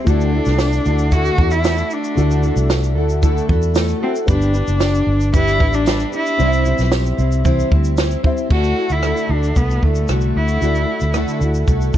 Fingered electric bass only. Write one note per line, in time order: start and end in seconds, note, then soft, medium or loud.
0.07 0.39 D2 loud
0.46 0.79 C2 medium
0.86 1.29 D2 medium
1.38 1.82 E2 medium
2.17 2.50 D2 medium
2.56 2.96 C2 medium
2.96 3.39 D2 loud
3.49 3.92 E2 medium
4.28 4.61 G1 loud
4.68 5.00 F#1 medium
5.07 5.60 G1 medium
5.60 6.03 A1 medium
6.39 6.72 C2 loud
6.79 7.11 B1 medium
7.19 7.62 C2 loud
7.72 8.15 D2 medium
8.51 8.72 D2 loud
8.90 9.12 D2 medium
9.29 9.51 D2 medium
9.56 9.78 C2 medium
9.83 10.04 D2 medium
10.09 10.31 C2 medium
10.36 10.57 D2 medium
10.62 10.84 D2 medium
11.02 11.23 D2 medium
11.41 11.63 D2 medium
11.68 11.89 C2 medium
11.94 11.98 D2 medium